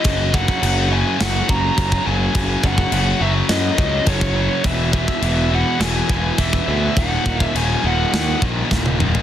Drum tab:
CC |x---x---x---x---|x---x---x---x---|x---x---x---x---|x---x---x-------|
SD |--------o-------|--------o-------|--------o-------|--------o---o---|
T1 |----------------|----------------|----------------|-------------o--|
T2 |----------------|----------------|----------------|--------------o-|
FT |----------------|----------------|----------------|---------------o|
BD |o-oo------o-oo--|o-oo------o-oo--|o-oo------o-oo--|o-oo------o-o---|